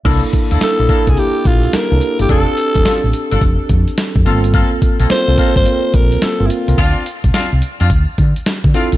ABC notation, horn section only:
X:1
M:4/4
L:1/16
Q:"Swing 16ths" 1/4=107
K:Cmix
V:1 name="Horn section"
[B,DEA] z2 [B,DEA] z2 [B,DEA] z8 z | [DFA]2 z2 [DFA] z2 [DFA] z6 [B,CFA] z | [B,CFA] z2 [B,CFA] z2 [B,CFA] z8 z | [CDF]2 z2 [CDF] z2 [CDF] z6 [CDF] z |]